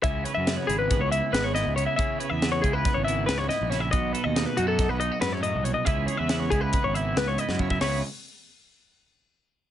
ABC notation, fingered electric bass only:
X:1
M:9/8
L:1/16
Q:3/8=93
K:C#m
V:1 name="Fingered electric bass" clef=bass
C,,2 z F,,2 z G,,,3 C,,2 z G,,,3 C,,2 z | C,2 z E,,3 C,,2 z G,,,3 C,,2 z ^A,,,3 | B,,,2 z D,,2 z F,,3 B,,,2 z F,,3 ^B,,,2 z | C,,2 z E,,3 C,,2 z G,,,3 C,,2 z F,,3 |
C,,2 z16 |]